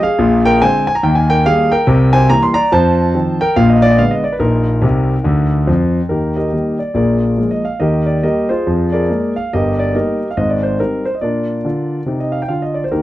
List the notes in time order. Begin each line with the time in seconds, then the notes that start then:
0.03 G#4 F5
0.19 A#1 A#2
0.45 A#4 G5
0.62 D3 G#3 C4 C5 G#5
0.87 G#5
0.95 A#5
1.03 D#2 D#3 G5
1.15 G#5
1.30 A#4 G5
1.46 D#3 G3 A#3 G#4 F5
1.72 A#4 G5
1.87 C2 C3
2.13 C5 G#5
2.29 E3 G3 A#3 A#5
2.42 C6
2.54 D5 A#5
2.72 F2 F3 C5 A5
3.15 D#3 F3 C4
3.41 A#4 G5
3.56 A#1 A#2 F5
3.69 D#5
3.82 D5
3.91 D#5
3.98 D3 G#3 B3 F5
4.11 D#5
4.24 D5
4.32 B4
4.39 A#1 A#2 D#4 A#4
4.82 C2 C3
5.24 D2 D3
5.67 F2 F3
6.09 D#2 D#3 D#4 G4 A#4
6.36 G4 A#4 D#5
6.53 D#3 G3 A#3
6.79 D5
6.94 A#1 A#2 G#4 A#4 D5
7.37 F3 G#3 A#3
7.51 D#5
7.65 F5
7.80 D#2 D#3 G4 A#4 D#5
8.06 D5
8.23 G3 A#3 G4 A#4 D#5
8.49 F4 G#4 C5
8.67 F2 F3
8.92 G#4 A#4 D5
9.09 G#3 A#3
9.36 F5
9.53 G1 G2 G4 A#4 D#5
9.79 D5
9.95 G3 A#3 D#4 G4 A#4 D#5
10.31 F5
10.37 G#1 G#2 D#5
10.50 D5
10.63 C5
10.80 G3 C4 D#4 A#4
11.05 C5
11.15 D#5
11.21 A#2 D4 F4 A#4 D5
11.65 D3 F4
12.06 C3 D#4
12.20 D#5
12.32 F5
12.42 G5
12.48 D3 F4 F5
12.62 D#5
12.74 D5
12.84 C5
12.91 D#2 D#3 D#4 G4 A#4